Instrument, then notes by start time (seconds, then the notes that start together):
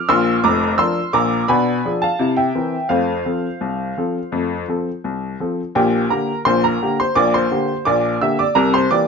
upright piano
0.09 A#1 A#2 C6 E6
0.44 F1 F2 A#5 D6
0.78 F3 D4 A#4 C6 E6
1.13 A#1 A#2 A#5 D6
1.48 B2 D4 G#5 B5
1.85 F3 D4 G#4
2.02 F5 A5
2.19 C3 E4
2.37 E5 G5
2.55 E3 C4 A#4
2.89 F2 A3 C5 F5
3.26 F3 C4 A4
3.61 C2
3.98 F3 C4 A4
4.32 F2 A3
4.68 F3 C4 A4
5.04 C2
5.40 F3 C4 A4
5.75 A#1 A#2 G4 G5
6.10 D3 A#3 G4 A#4 A#5
6.45 A#1 A#2 C5 C6
6.64 A#4 A#5
6.82 D3 A#3 G4
7.00 C5 C6
7.15 A#1 A#2 D5 D6
7.34 C5 C6
7.51 D3 A#3 G4
7.85 A#1 A#2 D5 D6
8.21 D3 A#3 G4 E5 E6
8.39 D5 D6
8.55 C2 C3 A#4 A#5
8.74 C5 C6
8.91 E3 A#3 G4 D5 D6